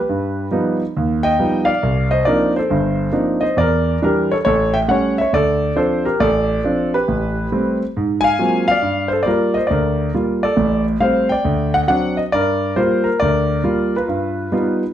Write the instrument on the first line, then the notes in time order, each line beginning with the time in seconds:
grand piano
Already playing: G4 B4
0.09 G2
0.51 F3 G3 B3 D#4
0.97 D#2
1.23 D#5 G5
1.39 F3 G3 B3 D#4
1.65 D5 F5
1.83 C2
2.11 C5 D#5
2.25 F3 A#3 C4 D4 D#4 A#4 D5
2.56 A4 C5
2.70 G1 G2
3.12 F3 A#3 C4 D4 D#4
3.41 C5 D#5
3.57 E2 A#4 D5
4.02 E3 G3 D4 A#4
4.06 G4
4.32 A4 C#5
4.45 A1 A4 C#5
4.74 E5 G5
4.88 G3 A3 C#4 C#5 F#5
5.18 C#5 E5
5.33 D2 A4 D5
5.76 F3 C4 D4 A4 C5
6.05 G4 A#4
6.20 A1 A4 D5
6.64 F3 C4 D4
6.94 G4 B4
7.08 A1
7.52 G3 A3 C4
7.97 G#2
8.21 F5 G#5
8.39 F#3 G#3 A#3 C4 F4
8.68 D5 F5
8.82 G2
9.08 C5
9.13 A4
9.23 G3 A#3 D5
9.27 F4 A#4
9.54 C5 D#5
9.67 D2 A#4 D5
10.14 G3 A#3 F4
10.43 A4 D5
10.57 A1 A2
11.00 G3 A3 C4 C5 F5
11.29 D5 G5
11.45 D2
11.74 F#5
11.88 F#3 C4 D4 F#5
12.17 D#5
12.32 G2 A#4 D5
12.76 G3 A#3 F4 C5
13.04 A#4
13.20 D2 A#4 D5
13.64 G3 A#3 F4
13.96 F4 B4
14.08 G2
14.52 G3 B3 D#4 F4